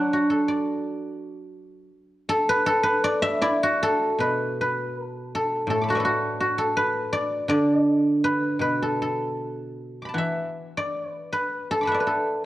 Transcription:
0.00 1.89 F#3 medium
0.00 1.34 D4 soft
0.00 0.30 A4 medium
0.00 0.51 B4 medium
0.00 0.48 D5 medium
0.00 0.95 E5 medium
0.00 1.39 F#5 medium
0.00 0.77 A5 medium
0.13 1.53 F#4 medium
0.30 1.71 A4 medium
0.48 1.90 D5 medium
2.29 2.66 A4 medium
2.49 2.83 B4 medium
2.66 3.82 A4 loud
2.83 4.20 B4 medium
3.04 3.41 D5 loud
3.22 4.94 E5 loud
3.42 6.02 E4 medium
3.42 5.27 D5 medium
3.63 5.90 F#4 medium
3.83 5.05 A4 loud
4.19 5.69 B2 soft
4.19 4.61 B4 medium
4.61 5.05 B4 medium
5.05 5.35 A4 medium
5.35 5.70 A4 medium
5.67 7.50 A2 soft
5.67 6.00 A4 medium
5.82 7.19 B5 soft
5.82 7.03 D6 soft
5.89 6.04 F#4 medium
5.89 7.53 F#5 soft
5.89 7.33 A5 soft
5.95 6.76 B4 soft
5.95 7.12 D5 soft
5.95 7.67 E5 soft
6.00 6.58 A4 soft
6.05 6.40 F#4 medium
6.41 8.84 F#4 medium
6.58 8.78 A4 medium
6.77 8.24 B4 medium
7.13 7.49 D5 loud
7.48 9.75 D3 medium
7.48 9.34 D5 medium
8.24 8.61 B4 medium
8.59 10.16 B2 soft
8.59 10.66 B4 medium
8.82 9.01 A4 medium
9.02 11.21 A4 medium
10.02 11.40 B5 soft
10.02 11.24 D6 soft
10.09 11.53 A5 soft
10.14 12.40 E3 soft
10.14 11.74 F#5 soft
10.18 11.90 E5 medium
10.77 11.11 D5 medium
11.11 11.33 B4 medium
11.33 11.87 B4 medium
11.71 12.06 A4 medium
11.81 12.45 B5 soft
11.81 12.45 D6 soft
11.85 12.00 B4 medium
11.85 12.45 F#5 soft
11.85 12.45 A5 soft
11.92 12.45 D5 soft
11.92 12.45 E5 soft
12.00 12.45 B4 soft
12.07 12.45 A4 medium

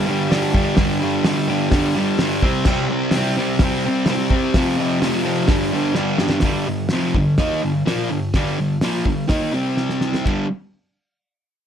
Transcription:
0.06 0.27 G2 medium
0.06 0.29 D3 medium
0.06 0.31 G3 medium
0.29 0.74 G2 medium
0.29 0.55 D3 medium
0.29 0.53 G3 medium
0.29 snare loud
0.29 open hi-hat medium
0.53 0.76 D3 medium
0.53 0.79 G3 medium
0.53 kick loud
0.75 1.23 G2 loud
0.75 1.03 D3 loud
0.75 1.00 G3 loud
0.75 kick loud
0.75 snare loud
0.75 open hi-hat medium
1.00 1.25 D3 medium
1.00 1.28 G3 medium
1.24 1.51 G2 medium
1.24 1.49 D3 loud
1.24 1.48 G3 loud
1.24 snare loud
1.24 open hi-hat medium
1.49 1.69 G2 medium
1.49 1.72 D3 medium
1.49 1.73 G3 medium
1.71 1.98 G2 medium
1.71 1.96 D3 medium
1.71 1.94 G3 medium
1.71 kick loud
1.71 snare loud
1.71 open hi-hat medium
1.96 2.18 G2 medium
1.96 2.19 D3 medium
1.96 2.21 G3 medium
2.19 2.41 G2 medium
2.19 2.42 D3 medium
2.19 2.43 G3 loud
2.19 snare loud
2.19 open hi-hat medium
2.42 2.67 G3 medium
2.42 2.69 C4 loud
2.42 kick medium
2.46 2.65 C3 medium
2.65 3.12 C3 medium
2.65 2.92 G3 loud
2.65 kick loud
2.65 snare loud
2.65 crash loud
2.70 2.89 C4 loud
2.90 3.15 G3 medium
2.90 3.16 C4 medium
3.11 3.39 C3 medium
3.11 snare loud
3.11 open hi-hat medium
3.16 3.38 G3 medium
3.16 3.36 C4 loud
3.37 3.60 C3 medium
3.37 3.62 G3 medium
3.37 3.63 C4 medium
3.59 3.87 C3 medium
3.59 kick loud
3.59 snare loud
3.59 open hi-hat medium
3.63 3.86 G3 medium
3.63 3.83 C4 medium
3.85 4.06 C3 medium
3.85 4.08 G3 medium
3.85 4.10 C4 medium
4.06 4.53 C3 medium
4.06 4.34 G3 medium
4.06 snare loud
4.06 open hi-hat medium
4.11 4.30 C4 medium
4.30 4.53 C4 medium
4.30 kick medium
4.35 4.55 G3 medium
4.54 4.99 F2 medium
4.54 4.80 C3 loud
4.54 4.76 F3 loud
4.54 kick loud
4.54 snare loud
4.54 open hi-hat medium
4.77 5.01 C3 medium
4.77 5.03 F3 medium
5.00 5.25 F2 medium
5.00 5.24 C3 medium
5.00 5.21 F3 medium
5.00 snare loud
5.00 open hi-hat medium
5.23 5.47 F2 medium
5.23 5.47 C3 medium
5.23 5.46 F3 medium
5.47 5.74 G2 loud
5.47 5.72 D3 loud
5.47 5.71 G3 loud
5.47 kick loud
5.47 snare loud
5.47 open hi-hat medium
5.72 5.93 G2 medium
5.72 5.96 D3 medium
5.72 5.97 G3 loud
5.95 6.41 G2 medium
5.95 6.21 D3 medium
5.95 snare medium
5.99 6.18 G3 medium
6.18 6.43 D3 medium
6.18 6.42 G3 medium
6.18 snare medium
6.29 snare loud
6.40 6.66 G2 medium
6.40 kick loud
6.40 snare loud
6.40 open hi-hat medium
6.44 6.67 D3 medium
6.44 6.67 G3 loud
6.67 6.86 G2 medium
6.67 6.87 D3 medium
6.89 7.14 F2 medium
6.89 7.15 C3 medium
6.89 snare loud
6.89 open hi-hat medium
6.93 7.15 F3 loud
7.15 7.35 G2 medium
7.15 7.35 D3 medium
7.15 kick medium
7.38 7.62 D#3 loud
7.38 7.62 A#3 medium
7.38 7.62 D#4 loud
7.38 kick loud
7.38 snare loud
7.38 open hi-hat medium
7.62 7.81 G2 medium
7.62 7.82 D3 medium
7.86 8.09 A#2 medium
7.86 8.09 F3 loud
7.86 8.10 A#3 loud
7.86 snare loud
7.86 open hi-hat medium
8.10 8.29 G2 medium
8.10 8.29 D3 medium
8.34 8.58 G2 loud
8.34 8.58 D3 loud
8.34 8.59 G3 medium
8.34 kick loud
8.34 snare loud
8.34 open hi-hat medium
8.60 8.78 G2 medium
8.60 8.78 D3 medium
8.81 9.05 A#2 loud
8.81 9.06 F3 medium
8.81 9.06 A#3 loud
8.81 snare loud
8.81 open hi-hat medium
9.05 9.25 G2 medium
9.05 9.25 D3 medium
9.05 kick medium
9.28 9.52 D#3 medium
9.28 9.52 A#3 medium
9.28 9.53 D#4 loud
9.28 kick loud
9.28 snare loud
9.28 open hi-hat medium
9.53 10.24 C3 medium
9.53 10.25 G3 medium
9.53 10.25 C4 medium
9.77 snare medium
9.89 snare medium
10.01 snare medium
10.14 snare medium
10.25 10.44 G2 medium
10.25 10.45 D3 medium
10.25 10.45 G3 medium
10.25 kick medium
10.25 ride bell medium

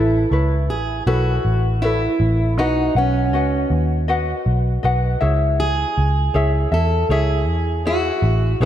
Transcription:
0.00 0.24 A1 medium
0.00 0.31 E4 soft
0.00 0.73 E4 medium
0.00 0.31 A4 soft
0.00 0.31 B4 soft
0.31 0.69 C#2 medium
0.31 1.06 E4 medium
0.31 1.08 B4 medium
0.31 1.06 C#5 medium
0.69 1.00 A1 medium
0.69 1.07 G#4 medium
1.07 1.37 B1 medium
1.07 1.82 E4 medium
1.07 1.85 F#4 medium
1.07 1.83 A4 medium
1.07 1.84 B4 medium
1.07 1.81 C#5 medium
1.45 2.06 A1 medium
1.82 2.53 E4 medium
1.82 2.58 E4 medium
1.82 2.59 A4 medium
1.82 2.58 B4 medium
1.82 2.58 C#5 medium
2.20 2.57 A1 medium
2.57 2.88 B1 medium
2.57 2.97 D#4 medium
2.57 2.96 F#4 medium
2.57 2.96 B4 medium
2.57 2.96 D#5 medium
2.57 2.95 F#5 medium
2.95 3.33 B1 medium
2.95 3.68 C#4 medium
2.95 3.32 F#4 soft
2.95 3.34 B4 soft
2.95 3.33 F#5 soft
3.33 3.64 C#2 medium
3.33 4.08 F#4 medium
3.33 4.08 B4 medium
3.33 4.07 D#5 medium
3.33 4.09 F#5 medium
3.70 4.32 D#2 medium
4.08 4.83 F#4 medium
4.08 4.83 B4 medium
4.08 4.82 D#5 medium
4.08 4.84 F#5 medium
4.46 4.77 B1 medium
4.83 5.15 B1 medium
4.83 5.21 F#4 medium
4.83 5.21 B4 medium
4.83 5.21 D#5 medium
4.83 5.20 F#5 medium
5.21 5.84 C#2 medium
5.21 6.35 E4 medium
5.21 6.34 G#4 medium
5.21 6.34 C#5 medium
5.21 6.35 E5 medium
5.60 6.69 G#4 medium
5.98 6.28 C#2 medium
6.34 6.65 C#2 medium
6.34 6.72 E4 medium
6.34 6.72 G#4 medium
6.34 6.72 C#5 medium
6.34 6.71 E5 medium
6.72 7.03 E2 medium
6.72 7.10 E4 soft
6.72 7.11 A4 medium
6.72 7.10 E5 soft
7.09 7.47 C#2 medium
7.09 7.86 E4 medium
7.09 7.86 G#4 medium
7.09 7.85 C#5 medium
7.09 7.87 E5 medium
7.47 8.09 E2 medium
7.85 8.62 E4 medium
7.85 8.63 F#4 medium
7.85 8.61 G#4 medium
7.85 8.60 C#5 medium
7.85 8.65 E5 medium
8.22 8.54 A1 medium
8.60 8.65 B1 medium
8.60 8.65 G#4 medium
8.60 8.65 B4 medium
8.60 8.65 C#5 medium

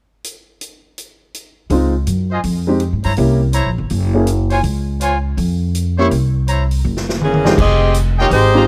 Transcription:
0.24 closed hi-hat soft
0.61 closed hi-hat soft
0.98 closed hi-hat soft
1.34 closed hi-hat soft
1.70 2.04 C#2 medium
1.70 1.92 G#3 soft
1.70 1.92 C4 soft
1.70 1.92 D#4 soft
1.70 1.92 F4 medium
1.70 open hi-hat soft
2.07 2.41 F#2 medium
2.07 closed hi-hat soft
2.31 2.40 F4 medium
2.31 2.40 C5 medium
2.31 2.40 D#5 medium
2.31 2.40 G#5 medium
2.44 2.89 F2 medium
2.44 open hi-hat soft
2.67 2.79 G#3 soft
2.67 2.80 C4 soft
2.67 2.80 D#4 soft
2.67 2.80 G4 medium
2.80 closed hi-hat soft
2.93 3.04 G#2 medium
3.04 3.16 G2 medium
3.04 3.13 E4 medium
3.04 3.13 C5 medium
3.04 3.13 C#5 medium
3.04 3.13 A#5 medium
3.04 open hi-hat soft
3.17 3.63 C2 medium
3.17 3.39 A#3 soft
3.17 3.39 C#4 soft
3.17 3.39 E4 soft
3.17 3.39 G4 soft
3.17 open hi-hat soft
3.53 3.70 E4 medium
3.53 3.70 C5 medium
3.53 3.70 C#5 medium
3.53 3.70 A#5 medium
3.53 closed hi-hat soft
3.66 3.78 A#1 medium
3.78 3.90 G1 medium
3.90 4.60 F#1 medium
3.90 open hi-hat soft
4.14 4.26 A#3 soft
4.14 4.26 C#4 soft
4.14 4.26 E4 soft
4.14 4.27 G#4 medium
4.27 closed hi-hat soft
4.50 4.60 F4 medium
4.50 4.60 C5 medium
4.50 4.60 C#5 medium
4.50 4.60 G#5 medium
4.50 open hi-hat soft
4.63 5.33 C#2 medium
4.63 open hi-hat soft
5.01 5.17 F4 medium
5.01 5.17 C5 medium
5.01 5.17 C#5 medium
5.01 5.17 G#5 medium
5.01 closed hi-hat soft
5.37 6.07 F2 medium
5.37 open hi-hat soft
5.75 closed hi-hat soft
5.98 6.10 A#3 soft
5.98 6.10 C#4 soft
5.98 6.07 E4 medium
5.98 6.10 E4 soft
5.98 6.11 G4 medium
5.98 6.07 C5 medium
5.98 6.07 C#5 medium
5.98 6.07 C#6 medium
6.11 6.81 C2 medium
6.11 open hi-hat soft
6.48 6.64 E4 medium
6.48 6.64 C5 medium
6.48 6.64 C#5 medium
6.48 6.64 A#5 medium
6.48 closed hi-hat soft
6.71 open hi-hat soft
6.84 7.54 F#1 medium
6.97 snare soft
7.09 snare medium
7.21 7.56 E3 medium
7.21 7.56 A#3 medium
7.21 7.56 C#4 medium
7.21 7.56 G#4 medium
7.21 mid tom soft
7.34 mid tom medium
7.45 7.56 F2 medium
7.45 7.57 G#3 soft
7.45 7.57 C4 soft
7.45 7.57 D#4 soft
7.45 7.53 F4 medium
7.45 7.57 G4 medium
7.45 7.53 G#4 medium
7.45 7.53 D#5 medium
7.45 7.54 G5 medium
7.45 snare medium
7.58 8.28 F1 medium
7.58 7.96 C4 medium
7.58 7.96 G4 medium
7.58 7.95 G#4 medium
7.58 7.95 D#5 loud
7.58 kick medium
7.58 crash medium
7.94 closed hi-hat soft
8.18 8.31 A#3 medium
8.18 8.31 D#4 medium
8.18 8.27 F4 medium
8.18 8.31 G4 medium
8.18 8.27 G#4 medium
8.18 8.31 C#5 medium
8.18 8.27 D#5 medium
8.18 8.27 G5 medium
8.31 8.68 G#1 medium
8.31 8.66 G#3 medium
8.31 8.66 D#4 medium
8.31 8.66 G4 medium
8.31 8.66 C5 medium
8.31 open hi-hat soft
8.54 8.66 G#3 medium
8.54 8.66 C4 soft
8.54 8.66 D#4 soft
8.54 8.64 F4 medium
8.54 8.67 F4 soft
8.54 8.67 G4 medium
8.54 8.63 G#4 medium
8.54 8.64 D#5 medium
8.54 8.64 A#5 medium

